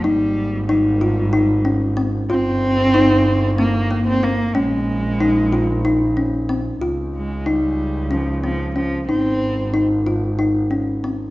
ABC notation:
X:1
M:7/8
L:1/16
Q:1/4=93
K:Ab
V:1 name="Kalimba"
E4 E2 F2 E2 D2 C2 | F4 E4 C2 B,2 C2 | D4 E2 F2 E2 D2 C2 | F4 E4 D2 C2 D2 |
E4 E2 F2 E2 D2 C2 |]
V:2 name="Cello" clef=bass
G,4 G,8 z2 | C8 B,3 C B,2 | A,8- A,2 z4 | z2 A,2 G,4 F,2 F,2 F,2 |
C4 z8 z2 |]
V:3 name="Double bass" clef=bass
A,,,12- A,,,2 | G,,,12- G,,,2 | B,,,12- B,,,2 | D,,12- D,,2 |
A,,,12- A,,,2 |]